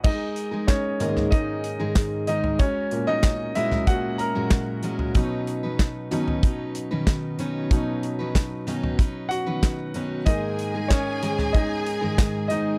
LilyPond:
<<
  \new Staff \with { instrumentName = "Violin section" } { \time 4/4 \key gis \minor \tempo 4 = 94 r1 | r1 | r1 | r1 |
<gis' gis''>1 | }
  \new Staff \with { instrumentName = "Grand piano" } { \time 4/4 \key gis \minor <dis' dis''>4 <cis' cis''>4 <dis' dis''>4. <dis' dis''>8 | <cis' cis''>8. <dis' dis''>8. <e' e''>8 <fis' fis''>8 <ais' ais''>4 r8 | r1 | r2 r8 <fis' fis''>4. |
<dis' dis''>4 <cis' cis''>4 <dis' dis''>4. <dis' dis''>8 | }
  \new Staff \with { instrumentName = "Grand piano" } { \clef bass \time 4/4 \key gis \minor r4. <gis, dis ais>2~ <gis, dis ais>8 | r8 <ais, ais cis'>8 r4 <ais, ais cis'>8 r4. | <b, fis dis'>4. <b, fis dis'>8 r2 | <b, fis dis'>1 |
<gis, dis ais>4. r2 r8 | }
  \new Staff \with { instrumentName = "Steel-string acoustic guitar" } { \time 4/4 \key gis \minor <gis dis' gis' ais'>8. <gis dis' gis' ais'>8. <gis, dis gis dis' gis' ais'>8 <gis dis' gis' ais'>8. <gis, dis gis dis' gis' ais'>8. <gis, dis gis dis' gis' ais'>8 | <gis cis' fis' ais'>8. <gis cis' fis' ais'>8. <ais, fis gis cis' fis' ais'>8 <gis cis' fis' ais'>8. <ais, fis gis cis' fis' ais'>8. <ais, fis gis cis' fis' ais'>8 | <fis cis' dis' b'>8. <fis cis' dis' b'>8. <b, dis fis cis' dis' b'>8 <fis cis' dis' b'>8. <b, dis fis cis' dis' b'>8. <b, dis fis cis' dis' b'>8 | <fis cis' dis' b'>8. <fis cis' dis' b'>8. <b, dis fis cis' dis' b'>8 <fis cis' dis' b'>8. <b, dis fis cis' dis' b'>8. <b, dis fis cis' dis' b'>8 |
<gis dis' gis' ais'>8. <gis dis' gis' ais'>8. <gis, dis gis dis' gis' ais'>8 <gis dis' gis' ais'>8. <gis, dis gis dis' gis' ais'>8. <gis, dis gis dis' gis' ais'>8 | }
  \new DrumStaff \with { instrumentName = "Drums" } \drummode { \time 4/4 <cymc bd>8 hh8 <hc hh bd sn>8 hh16 <sn tomfh>16 <hh bd>8 hh8 <hc hh bd sn>8 hh16 tomfh16 | <hh bd>8 hh8 <hc hh bd sn>8 hh16 <sn tomfh>16 <hh bd>8 hh8 <hc hh bd sn>8 hh16 tomfh16 | <hh bd>8 hh8 <hc hh bd sn>8 hh16 tomfh16 <hh bd>8 hh8 <hc hh bd sn>8 hh8 | <hh bd>8 hh8 <hc hh bd sn>8 hh16 tomfh16 <hh bd>8 hh8 <hc hh bd sn>8 hh8 |
<hh bd>8 hh8 <hc hh bd sn>8 hh16 <sn tomfh>16 <hh bd>8 hh8 <hc hh bd sn>8 hh8 | }
>>